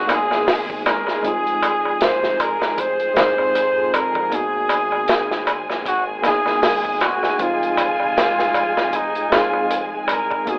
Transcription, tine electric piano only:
0.00 0.07 A#3 medium
0.00 0.09 B3 medium
0.00 0.11 D#4 medium
0.00 1.26 F#4 loud
0.07 1.19 A#3 medium
0.07 1.20 B3 medium
0.07 1.21 D#4 medium
0.12 1.22 G#4 loud
1.22 3.12 G#3 medium
1.22 3.12 C4 medium
1.22 3.13 D#4 medium
1.27 3.14 F4 loud
3.14 4.27 G#3 medium
3.14 4.28 C4 medium
3.14 4.29 D#4 medium
3.20 4.29 G#4 loud
4.30 6.19 A#3 medium
4.30 6.20 B3 medium
4.30 6.21 D#4 medium
4.35 6.22 F#4 medium
6.22 7.35 A#3 medium
6.22 7.36 B3 medium
6.22 7.36 D#4 medium
6.28 7.37 G#4 loud
7.38 9.27 G#3 medium
7.38 9.28 C4 medium
7.38 9.29 D#4 medium
7.43 9.30 F4 medium
9.30 10.42 G#3 medium
9.30 10.43 C4 medium
9.30 10.44 D#4 medium
9.35 10.45 G#4 loud
10.45 10.59 A#3 medium
10.45 10.59 B3 medium
10.45 10.59 D#4 medium
10.51 10.59 F#4 medium

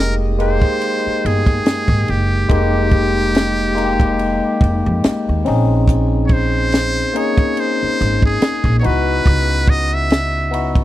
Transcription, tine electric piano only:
0.00 0.38 G#3 loud
0.00 0.39 A#3 medium
0.00 0.40 D#4 medium
0.00 2.52 G4 loud
0.38 1.65 G#3 medium
0.38 1.66 A#3 medium
0.38 1.66 D#4 medium
0.38 1.67 G5 medium
2.48 3.46 G#3 medium
2.48 3.46 A#3 medium
2.48 3.47 D#4 medium
2.48 3.47 G4 loud
3.75 5.03 G#3 medium
3.75 5.03 A#3 medium
3.75 5.04 D#4 medium
3.75 3.83 G4 medium
3.85 5.07 G4 loud
5.45 6.81 C4 loud
5.45 6.82 C#4 medium
5.45 6.82 D#4 medium
5.45 6.83 G#4 loud
7.13 8.41 A#3 medium
7.13 8.42 C#4 medium
7.13 8.42 D#4 medium
7.13 8.43 G#4 medium
8.82 10.19 B3 medium
8.82 10.19 D#4 medium
8.82 10.20 E4 medium
8.82 10.21 F#4 medium
10.51 10.84 B3 medium
10.51 10.84 D#4 medium
10.51 10.84 E4 medium
10.51 10.84 F#4 medium

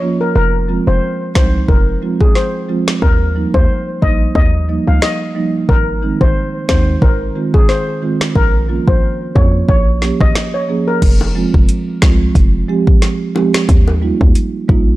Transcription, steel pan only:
0.21 0.32 A#4 medium
0.35 0.49 A#4 loud
0.87 0.98 C5 medium
1.35 1.49 C5 medium
1.69 1.83 A#4 medium
2.21 2.32 G#4 medium
2.36 2.85 C5 medium
3.02 3.16 A#4 medium
3.54 3.65 C5 medium
4.02 4.16 D#5 medium
4.36 4.49 D#5 medium
4.87 4.98 F5 medium
5.02 5.51 D#5 medium
5.69 5.83 A#4 loud
6.21 6.32 C5 medium
6.69 6.83 C5 medium
7.02 7.16 A#4 medium
7.54 7.65 G#4 medium
7.69 8.18 C5 medium
8.36 8.49 A#4 loud
8.87 8.98 C5 medium
9.35 9.49 C#5 medium
9.69 9.83 C#5 medium
10.21 10.32 D#5 medium
10.54 10.65 C#5 medium
10.88 10.98 A#4 medium

